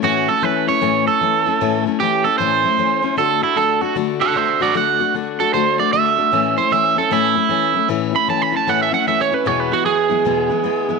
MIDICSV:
0, 0, Header, 1, 3, 480
1, 0, Start_track
1, 0, Key_signature, 3, "major"
1, 0, Tempo, 392670
1, 46, Time_signature, 4, 2, 24, 8
1, 13440, End_track
2, 0, Start_track
2, 0, Title_t, "Clean electric guitar"
2, 0, Program_c, 0, 27
2, 50, Note_on_c, 0, 66, 105
2, 341, Note_off_c, 0, 66, 0
2, 348, Note_on_c, 0, 69, 82
2, 526, Note_off_c, 0, 69, 0
2, 526, Note_on_c, 0, 71, 96
2, 819, Note_off_c, 0, 71, 0
2, 837, Note_on_c, 0, 73, 80
2, 1298, Note_off_c, 0, 73, 0
2, 1313, Note_on_c, 0, 69, 91
2, 2242, Note_off_c, 0, 69, 0
2, 2443, Note_on_c, 0, 67, 99
2, 2737, Note_off_c, 0, 67, 0
2, 2740, Note_on_c, 0, 69, 95
2, 2906, Note_off_c, 0, 69, 0
2, 2911, Note_on_c, 0, 72, 102
2, 3849, Note_off_c, 0, 72, 0
2, 3889, Note_on_c, 0, 69, 90
2, 4181, Note_off_c, 0, 69, 0
2, 4197, Note_on_c, 0, 64, 80
2, 4364, Note_on_c, 0, 69, 80
2, 4365, Note_off_c, 0, 64, 0
2, 4662, Note_off_c, 0, 69, 0
2, 4662, Note_on_c, 0, 66, 89
2, 4838, Note_off_c, 0, 66, 0
2, 5146, Note_on_c, 0, 69, 85
2, 5152, Note_on_c, 0, 78, 81
2, 5334, Note_off_c, 0, 69, 0
2, 5334, Note_on_c, 0, 72, 90
2, 5344, Note_off_c, 0, 78, 0
2, 5344, Note_on_c, 0, 76, 79
2, 5628, Note_off_c, 0, 76, 0
2, 5634, Note_off_c, 0, 72, 0
2, 5646, Note_on_c, 0, 66, 81
2, 5654, Note_on_c, 0, 74, 89
2, 5805, Note_off_c, 0, 66, 0
2, 5813, Note_off_c, 0, 74, 0
2, 5832, Note_on_c, 0, 78, 112
2, 6286, Note_off_c, 0, 78, 0
2, 6599, Note_on_c, 0, 69, 97
2, 6763, Note_off_c, 0, 69, 0
2, 6768, Note_on_c, 0, 72, 90
2, 7062, Note_off_c, 0, 72, 0
2, 7085, Note_on_c, 0, 74, 85
2, 7242, Note_off_c, 0, 74, 0
2, 7247, Note_on_c, 0, 76, 95
2, 8008, Note_off_c, 0, 76, 0
2, 8041, Note_on_c, 0, 72, 85
2, 8209, Note_off_c, 0, 72, 0
2, 8218, Note_on_c, 0, 76, 96
2, 8508, Note_off_c, 0, 76, 0
2, 8534, Note_on_c, 0, 69, 91
2, 8696, Note_off_c, 0, 69, 0
2, 8711, Note_on_c, 0, 64, 105
2, 9633, Note_off_c, 0, 64, 0
2, 9971, Note_on_c, 0, 83, 104
2, 10126, Note_off_c, 0, 83, 0
2, 10145, Note_on_c, 0, 81, 89
2, 10291, Note_off_c, 0, 81, 0
2, 10291, Note_on_c, 0, 83, 90
2, 10446, Note_off_c, 0, 83, 0
2, 10471, Note_on_c, 0, 81, 94
2, 10617, Note_off_c, 0, 81, 0
2, 10627, Note_on_c, 0, 78, 90
2, 10774, Note_off_c, 0, 78, 0
2, 10789, Note_on_c, 0, 76, 91
2, 10923, Note_off_c, 0, 76, 0
2, 10928, Note_on_c, 0, 78, 95
2, 11084, Note_off_c, 0, 78, 0
2, 11097, Note_on_c, 0, 76, 90
2, 11249, Note_off_c, 0, 76, 0
2, 11261, Note_on_c, 0, 73, 91
2, 11418, Note_off_c, 0, 73, 0
2, 11418, Note_on_c, 0, 71, 90
2, 11576, Note_off_c, 0, 71, 0
2, 11576, Note_on_c, 0, 73, 102
2, 11733, Note_off_c, 0, 73, 0
2, 11733, Note_on_c, 0, 71, 84
2, 11887, Note_off_c, 0, 71, 0
2, 11897, Note_on_c, 0, 66, 87
2, 12045, Note_off_c, 0, 66, 0
2, 12050, Note_on_c, 0, 68, 97
2, 13440, Note_off_c, 0, 68, 0
2, 13440, End_track
3, 0, Start_track
3, 0, Title_t, "Steel-string acoustic guitar"
3, 0, Program_c, 1, 25
3, 25, Note_on_c, 1, 45, 85
3, 36, Note_on_c, 1, 52, 76
3, 39, Note_on_c, 1, 57, 87
3, 44, Note_on_c, 1, 61, 83
3, 49, Note_on_c, 1, 64, 90
3, 332, Note_off_c, 1, 64, 0
3, 338, Note_off_c, 1, 45, 0
3, 343, Note_off_c, 1, 52, 0
3, 344, Note_off_c, 1, 61, 0
3, 345, Note_off_c, 1, 57, 0
3, 347, Note_on_c, 1, 64, 59
3, 359, Note_on_c, 1, 61, 50
3, 370, Note_on_c, 1, 57, 45
3, 510, Note_off_c, 1, 57, 0
3, 515, Note_on_c, 1, 52, 60
3, 516, Note_off_c, 1, 61, 0
3, 524, Note_on_c, 1, 57, 59
3, 525, Note_off_c, 1, 64, 0
3, 531, Note_on_c, 1, 61, 69
3, 537, Note_on_c, 1, 64, 62
3, 805, Note_off_c, 1, 64, 0
3, 819, Note_on_c, 1, 64, 58
3, 820, Note_off_c, 1, 61, 0
3, 823, Note_off_c, 1, 52, 0
3, 827, Note_off_c, 1, 57, 0
3, 835, Note_on_c, 1, 61, 55
3, 846, Note_on_c, 1, 57, 52
3, 986, Note_off_c, 1, 57, 0
3, 992, Note_off_c, 1, 61, 0
3, 993, Note_on_c, 1, 52, 88
3, 995, Note_on_c, 1, 45, 80
3, 1001, Note_off_c, 1, 64, 0
3, 1001, Note_on_c, 1, 57, 87
3, 1007, Note_on_c, 1, 61, 88
3, 1014, Note_on_c, 1, 64, 83
3, 1282, Note_off_c, 1, 64, 0
3, 1293, Note_off_c, 1, 61, 0
3, 1296, Note_on_c, 1, 64, 57
3, 1301, Note_off_c, 1, 52, 0
3, 1302, Note_off_c, 1, 45, 0
3, 1305, Note_off_c, 1, 57, 0
3, 1308, Note_on_c, 1, 61, 53
3, 1475, Note_on_c, 1, 52, 55
3, 1480, Note_off_c, 1, 64, 0
3, 1485, Note_off_c, 1, 61, 0
3, 1486, Note_on_c, 1, 57, 64
3, 1499, Note_on_c, 1, 61, 62
3, 1504, Note_on_c, 1, 64, 63
3, 1770, Note_off_c, 1, 64, 0
3, 1782, Note_off_c, 1, 52, 0
3, 1783, Note_off_c, 1, 61, 0
3, 1784, Note_on_c, 1, 64, 56
3, 1788, Note_off_c, 1, 57, 0
3, 1798, Note_on_c, 1, 61, 46
3, 1810, Note_on_c, 1, 57, 49
3, 1956, Note_off_c, 1, 57, 0
3, 1961, Note_off_c, 1, 61, 0
3, 1964, Note_off_c, 1, 64, 0
3, 1965, Note_on_c, 1, 45, 87
3, 1970, Note_on_c, 1, 52, 89
3, 1971, Note_on_c, 1, 57, 81
3, 1975, Note_on_c, 1, 61, 82
3, 1980, Note_on_c, 1, 64, 94
3, 2255, Note_off_c, 1, 64, 0
3, 2267, Note_off_c, 1, 45, 0
3, 2270, Note_off_c, 1, 52, 0
3, 2270, Note_off_c, 1, 57, 0
3, 2270, Note_on_c, 1, 64, 62
3, 2273, Note_off_c, 1, 61, 0
3, 2287, Note_on_c, 1, 61, 60
3, 2302, Note_on_c, 1, 57, 58
3, 2446, Note_off_c, 1, 64, 0
3, 2449, Note_off_c, 1, 57, 0
3, 2451, Note_on_c, 1, 52, 59
3, 2455, Note_off_c, 1, 61, 0
3, 2464, Note_on_c, 1, 57, 70
3, 2471, Note_on_c, 1, 61, 67
3, 2476, Note_on_c, 1, 64, 64
3, 2728, Note_off_c, 1, 64, 0
3, 2742, Note_on_c, 1, 64, 55
3, 2743, Note_off_c, 1, 61, 0
3, 2750, Note_off_c, 1, 52, 0
3, 2757, Note_off_c, 1, 57, 0
3, 2758, Note_on_c, 1, 61, 49
3, 2771, Note_on_c, 1, 57, 50
3, 2922, Note_off_c, 1, 57, 0
3, 2923, Note_off_c, 1, 64, 0
3, 2924, Note_on_c, 1, 45, 69
3, 2930, Note_off_c, 1, 61, 0
3, 2935, Note_on_c, 1, 52, 74
3, 2937, Note_on_c, 1, 57, 80
3, 2944, Note_on_c, 1, 61, 84
3, 2947, Note_on_c, 1, 64, 86
3, 3213, Note_off_c, 1, 64, 0
3, 3224, Note_off_c, 1, 61, 0
3, 3227, Note_off_c, 1, 45, 0
3, 3228, Note_on_c, 1, 64, 54
3, 3233, Note_off_c, 1, 52, 0
3, 3233, Note_off_c, 1, 57, 0
3, 3239, Note_on_c, 1, 61, 52
3, 3248, Note_on_c, 1, 57, 52
3, 3388, Note_off_c, 1, 57, 0
3, 3391, Note_on_c, 1, 52, 63
3, 3393, Note_off_c, 1, 61, 0
3, 3402, Note_off_c, 1, 64, 0
3, 3403, Note_on_c, 1, 57, 67
3, 3408, Note_on_c, 1, 61, 69
3, 3417, Note_on_c, 1, 64, 67
3, 3679, Note_off_c, 1, 64, 0
3, 3694, Note_on_c, 1, 64, 67
3, 3695, Note_off_c, 1, 61, 0
3, 3701, Note_off_c, 1, 52, 0
3, 3707, Note_off_c, 1, 57, 0
3, 3710, Note_on_c, 1, 61, 62
3, 3726, Note_on_c, 1, 57, 49
3, 3867, Note_off_c, 1, 57, 0
3, 3874, Note_on_c, 1, 50, 71
3, 3879, Note_off_c, 1, 64, 0
3, 3881, Note_off_c, 1, 61, 0
3, 3882, Note_on_c, 1, 57, 79
3, 3886, Note_on_c, 1, 62, 76
3, 3890, Note_on_c, 1, 66, 91
3, 4156, Note_off_c, 1, 66, 0
3, 4168, Note_off_c, 1, 62, 0
3, 4171, Note_on_c, 1, 66, 58
3, 4179, Note_off_c, 1, 57, 0
3, 4182, Note_off_c, 1, 50, 0
3, 4183, Note_on_c, 1, 62, 49
3, 4193, Note_on_c, 1, 57, 47
3, 4341, Note_off_c, 1, 57, 0
3, 4345, Note_on_c, 1, 50, 65
3, 4346, Note_off_c, 1, 62, 0
3, 4352, Note_off_c, 1, 66, 0
3, 4355, Note_on_c, 1, 57, 57
3, 4361, Note_on_c, 1, 62, 70
3, 4367, Note_on_c, 1, 66, 62
3, 4638, Note_off_c, 1, 66, 0
3, 4652, Note_off_c, 1, 62, 0
3, 4653, Note_on_c, 1, 66, 59
3, 4658, Note_off_c, 1, 50, 0
3, 4663, Note_off_c, 1, 57, 0
3, 4666, Note_on_c, 1, 62, 55
3, 4678, Note_on_c, 1, 57, 47
3, 4827, Note_off_c, 1, 57, 0
3, 4832, Note_off_c, 1, 62, 0
3, 4832, Note_on_c, 1, 50, 80
3, 4834, Note_off_c, 1, 66, 0
3, 4842, Note_on_c, 1, 57, 77
3, 4847, Note_on_c, 1, 62, 82
3, 4848, Note_on_c, 1, 66, 79
3, 5121, Note_off_c, 1, 66, 0
3, 5136, Note_on_c, 1, 66, 56
3, 5140, Note_off_c, 1, 62, 0
3, 5142, Note_off_c, 1, 50, 0
3, 5147, Note_off_c, 1, 57, 0
3, 5155, Note_on_c, 1, 62, 50
3, 5165, Note_on_c, 1, 57, 46
3, 5307, Note_off_c, 1, 57, 0
3, 5311, Note_on_c, 1, 50, 55
3, 5317, Note_off_c, 1, 62, 0
3, 5320, Note_off_c, 1, 66, 0
3, 5322, Note_on_c, 1, 57, 58
3, 5332, Note_on_c, 1, 62, 62
3, 5335, Note_on_c, 1, 66, 62
3, 5604, Note_off_c, 1, 66, 0
3, 5615, Note_off_c, 1, 62, 0
3, 5619, Note_on_c, 1, 66, 58
3, 5622, Note_off_c, 1, 50, 0
3, 5627, Note_off_c, 1, 57, 0
3, 5629, Note_on_c, 1, 62, 55
3, 5645, Note_on_c, 1, 57, 49
3, 5787, Note_off_c, 1, 57, 0
3, 5794, Note_off_c, 1, 62, 0
3, 5795, Note_on_c, 1, 50, 73
3, 5802, Note_off_c, 1, 66, 0
3, 5802, Note_on_c, 1, 57, 87
3, 5808, Note_on_c, 1, 62, 88
3, 5816, Note_on_c, 1, 66, 87
3, 6089, Note_off_c, 1, 66, 0
3, 6104, Note_off_c, 1, 50, 0
3, 6104, Note_off_c, 1, 62, 0
3, 6104, Note_on_c, 1, 66, 55
3, 6107, Note_off_c, 1, 57, 0
3, 6118, Note_on_c, 1, 62, 55
3, 6130, Note_on_c, 1, 57, 48
3, 6278, Note_off_c, 1, 57, 0
3, 6282, Note_on_c, 1, 50, 65
3, 6285, Note_off_c, 1, 62, 0
3, 6285, Note_off_c, 1, 66, 0
3, 6293, Note_on_c, 1, 57, 60
3, 6300, Note_on_c, 1, 62, 66
3, 6310, Note_on_c, 1, 66, 66
3, 6575, Note_off_c, 1, 66, 0
3, 6588, Note_off_c, 1, 50, 0
3, 6589, Note_on_c, 1, 66, 59
3, 6592, Note_off_c, 1, 62, 0
3, 6593, Note_off_c, 1, 57, 0
3, 6606, Note_on_c, 1, 62, 57
3, 6620, Note_on_c, 1, 57, 46
3, 6764, Note_off_c, 1, 57, 0
3, 6768, Note_off_c, 1, 66, 0
3, 6770, Note_off_c, 1, 62, 0
3, 6770, Note_on_c, 1, 50, 80
3, 6778, Note_on_c, 1, 57, 78
3, 6785, Note_on_c, 1, 62, 82
3, 6787, Note_on_c, 1, 66, 76
3, 7051, Note_off_c, 1, 66, 0
3, 7066, Note_off_c, 1, 62, 0
3, 7066, Note_on_c, 1, 66, 60
3, 7072, Note_off_c, 1, 50, 0
3, 7076, Note_off_c, 1, 57, 0
3, 7081, Note_on_c, 1, 62, 56
3, 7094, Note_on_c, 1, 57, 44
3, 7238, Note_off_c, 1, 57, 0
3, 7242, Note_on_c, 1, 50, 58
3, 7246, Note_off_c, 1, 66, 0
3, 7248, Note_off_c, 1, 62, 0
3, 7253, Note_on_c, 1, 57, 72
3, 7263, Note_on_c, 1, 62, 67
3, 7264, Note_on_c, 1, 66, 66
3, 7524, Note_off_c, 1, 66, 0
3, 7538, Note_on_c, 1, 66, 52
3, 7543, Note_off_c, 1, 62, 0
3, 7548, Note_off_c, 1, 50, 0
3, 7554, Note_off_c, 1, 57, 0
3, 7557, Note_on_c, 1, 62, 55
3, 7568, Note_on_c, 1, 57, 46
3, 7719, Note_off_c, 1, 57, 0
3, 7722, Note_on_c, 1, 45, 71
3, 7723, Note_off_c, 1, 66, 0
3, 7729, Note_on_c, 1, 52, 74
3, 7732, Note_off_c, 1, 62, 0
3, 7734, Note_on_c, 1, 57, 76
3, 7738, Note_on_c, 1, 61, 85
3, 7742, Note_on_c, 1, 64, 94
3, 8016, Note_off_c, 1, 64, 0
3, 8028, Note_off_c, 1, 45, 0
3, 8030, Note_on_c, 1, 64, 58
3, 8032, Note_off_c, 1, 52, 0
3, 8034, Note_off_c, 1, 57, 0
3, 8036, Note_off_c, 1, 61, 0
3, 8050, Note_on_c, 1, 61, 51
3, 8062, Note_on_c, 1, 57, 47
3, 8205, Note_off_c, 1, 57, 0
3, 8206, Note_on_c, 1, 52, 60
3, 8209, Note_off_c, 1, 64, 0
3, 8213, Note_off_c, 1, 61, 0
3, 8220, Note_on_c, 1, 57, 62
3, 8228, Note_on_c, 1, 61, 67
3, 8237, Note_on_c, 1, 64, 77
3, 8498, Note_off_c, 1, 64, 0
3, 8511, Note_off_c, 1, 52, 0
3, 8513, Note_on_c, 1, 64, 63
3, 8514, Note_off_c, 1, 61, 0
3, 8518, Note_off_c, 1, 57, 0
3, 8528, Note_on_c, 1, 61, 55
3, 8542, Note_on_c, 1, 57, 47
3, 8677, Note_off_c, 1, 57, 0
3, 8685, Note_off_c, 1, 61, 0
3, 8687, Note_on_c, 1, 45, 78
3, 8691, Note_off_c, 1, 64, 0
3, 8692, Note_on_c, 1, 57, 89
3, 8693, Note_on_c, 1, 52, 78
3, 8700, Note_on_c, 1, 61, 89
3, 8708, Note_on_c, 1, 64, 91
3, 8971, Note_off_c, 1, 64, 0
3, 8986, Note_on_c, 1, 64, 59
3, 8987, Note_off_c, 1, 61, 0
3, 8991, Note_off_c, 1, 45, 0
3, 8994, Note_off_c, 1, 52, 0
3, 8994, Note_off_c, 1, 57, 0
3, 9002, Note_on_c, 1, 61, 48
3, 9013, Note_on_c, 1, 57, 53
3, 9152, Note_off_c, 1, 57, 0
3, 9154, Note_on_c, 1, 52, 62
3, 9163, Note_off_c, 1, 61, 0
3, 9166, Note_on_c, 1, 57, 62
3, 9167, Note_off_c, 1, 64, 0
3, 9178, Note_on_c, 1, 61, 69
3, 9184, Note_on_c, 1, 64, 74
3, 9442, Note_off_c, 1, 64, 0
3, 9457, Note_on_c, 1, 64, 60
3, 9462, Note_off_c, 1, 61, 0
3, 9465, Note_off_c, 1, 52, 0
3, 9471, Note_off_c, 1, 57, 0
3, 9476, Note_on_c, 1, 61, 58
3, 9488, Note_on_c, 1, 57, 58
3, 9636, Note_off_c, 1, 57, 0
3, 9636, Note_on_c, 1, 45, 91
3, 9639, Note_off_c, 1, 61, 0
3, 9643, Note_off_c, 1, 64, 0
3, 9644, Note_on_c, 1, 52, 87
3, 9650, Note_on_c, 1, 57, 85
3, 9654, Note_on_c, 1, 61, 100
3, 9658, Note_on_c, 1, 64, 97
3, 9915, Note_off_c, 1, 64, 0
3, 9930, Note_off_c, 1, 61, 0
3, 9930, Note_on_c, 1, 64, 59
3, 9939, Note_off_c, 1, 57, 0
3, 9945, Note_on_c, 1, 61, 47
3, 9946, Note_off_c, 1, 45, 0
3, 9950, Note_off_c, 1, 52, 0
3, 9954, Note_on_c, 1, 57, 48
3, 10115, Note_off_c, 1, 57, 0
3, 10119, Note_off_c, 1, 64, 0
3, 10119, Note_on_c, 1, 52, 68
3, 10127, Note_off_c, 1, 61, 0
3, 10130, Note_on_c, 1, 57, 55
3, 10139, Note_on_c, 1, 61, 69
3, 10144, Note_on_c, 1, 64, 74
3, 10402, Note_off_c, 1, 64, 0
3, 10417, Note_on_c, 1, 64, 57
3, 10422, Note_off_c, 1, 61, 0
3, 10427, Note_off_c, 1, 52, 0
3, 10433, Note_off_c, 1, 57, 0
3, 10436, Note_on_c, 1, 61, 49
3, 10448, Note_on_c, 1, 57, 52
3, 10593, Note_off_c, 1, 57, 0
3, 10593, Note_off_c, 1, 61, 0
3, 10597, Note_off_c, 1, 64, 0
3, 10599, Note_on_c, 1, 52, 71
3, 10600, Note_on_c, 1, 45, 66
3, 10608, Note_on_c, 1, 57, 86
3, 10608, Note_on_c, 1, 61, 88
3, 10611, Note_on_c, 1, 64, 84
3, 10879, Note_off_c, 1, 64, 0
3, 10892, Note_off_c, 1, 61, 0
3, 10893, Note_on_c, 1, 64, 54
3, 10906, Note_off_c, 1, 57, 0
3, 10907, Note_off_c, 1, 52, 0
3, 10907, Note_on_c, 1, 61, 50
3, 10908, Note_off_c, 1, 45, 0
3, 10920, Note_on_c, 1, 57, 47
3, 11079, Note_off_c, 1, 57, 0
3, 11081, Note_off_c, 1, 64, 0
3, 11085, Note_on_c, 1, 52, 62
3, 11088, Note_off_c, 1, 61, 0
3, 11094, Note_on_c, 1, 57, 63
3, 11101, Note_on_c, 1, 61, 58
3, 11110, Note_on_c, 1, 64, 64
3, 11371, Note_off_c, 1, 64, 0
3, 11381, Note_off_c, 1, 61, 0
3, 11385, Note_on_c, 1, 64, 52
3, 11390, Note_off_c, 1, 52, 0
3, 11394, Note_off_c, 1, 57, 0
3, 11395, Note_on_c, 1, 61, 49
3, 11410, Note_on_c, 1, 57, 43
3, 11552, Note_on_c, 1, 40, 77
3, 11560, Note_off_c, 1, 57, 0
3, 11560, Note_off_c, 1, 64, 0
3, 11563, Note_on_c, 1, 52, 84
3, 11564, Note_on_c, 1, 47, 90
3, 11565, Note_on_c, 1, 56, 92
3, 11571, Note_off_c, 1, 61, 0
3, 11574, Note_on_c, 1, 64, 91
3, 11576, Note_on_c, 1, 59, 80
3, 11852, Note_off_c, 1, 64, 0
3, 11859, Note_off_c, 1, 59, 0
3, 11863, Note_off_c, 1, 40, 0
3, 11864, Note_off_c, 1, 56, 0
3, 11866, Note_on_c, 1, 64, 57
3, 11869, Note_off_c, 1, 47, 0
3, 11869, Note_off_c, 1, 52, 0
3, 11874, Note_on_c, 1, 59, 54
3, 11878, Note_on_c, 1, 56, 50
3, 11892, Note_on_c, 1, 52, 45
3, 12024, Note_off_c, 1, 52, 0
3, 12034, Note_off_c, 1, 56, 0
3, 12039, Note_on_c, 1, 52, 53
3, 12047, Note_off_c, 1, 59, 0
3, 12047, Note_off_c, 1, 64, 0
3, 12049, Note_on_c, 1, 56, 67
3, 12061, Note_on_c, 1, 59, 63
3, 12067, Note_on_c, 1, 64, 65
3, 12326, Note_off_c, 1, 64, 0
3, 12339, Note_off_c, 1, 59, 0
3, 12340, Note_on_c, 1, 64, 59
3, 12347, Note_off_c, 1, 52, 0
3, 12352, Note_off_c, 1, 56, 0
3, 12353, Note_on_c, 1, 59, 56
3, 12366, Note_on_c, 1, 56, 48
3, 12375, Note_on_c, 1, 52, 50
3, 12523, Note_off_c, 1, 52, 0
3, 12524, Note_off_c, 1, 64, 0
3, 12529, Note_off_c, 1, 56, 0
3, 12529, Note_on_c, 1, 40, 85
3, 12530, Note_off_c, 1, 59, 0
3, 12531, Note_on_c, 1, 47, 73
3, 12538, Note_on_c, 1, 52, 72
3, 12544, Note_on_c, 1, 56, 82
3, 12545, Note_on_c, 1, 59, 83
3, 12545, Note_on_c, 1, 64, 82
3, 12814, Note_off_c, 1, 64, 0
3, 12824, Note_off_c, 1, 59, 0
3, 12828, Note_on_c, 1, 64, 62
3, 12832, Note_off_c, 1, 40, 0
3, 12832, Note_off_c, 1, 47, 0
3, 12834, Note_off_c, 1, 56, 0
3, 12836, Note_off_c, 1, 52, 0
3, 12839, Note_on_c, 1, 59, 54
3, 12849, Note_on_c, 1, 56, 49
3, 12856, Note_on_c, 1, 52, 55
3, 12985, Note_off_c, 1, 52, 0
3, 12991, Note_off_c, 1, 56, 0
3, 13000, Note_on_c, 1, 52, 68
3, 13005, Note_off_c, 1, 59, 0
3, 13005, Note_on_c, 1, 56, 70
3, 13008, Note_off_c, 1, 64, 0
3, 13020, Note_on_c, 1, 59, 74
3, 13023, Note_on_c, 1, 64, 74
3, 13292, Note_off_c, 1, 64, 0
3, 13305, Note_off_c, 1, 59, 0
3, 13307, Note_off_c, 1, 52, 0
3, 13307, Note_on_c, 1, 64, 61
3, 13310, Note_off_c, 1, 56, 0
3, 13319, Note_on_c, 1, 59, 62
3, 13329, Note_on_c, 1, 56, 58
3, 13332, Note_on_c, 1, 52, 50
3, 13440, Note_off_c, 1, 52, 0
3, 13440, Note_off_c, 1, 56, 0
3, 13440, Note_off_c, 1, 59, 0
3, 13440, Note_off_c, 1, 64, 0
3, 13440, End_track
0, 0, End_of_file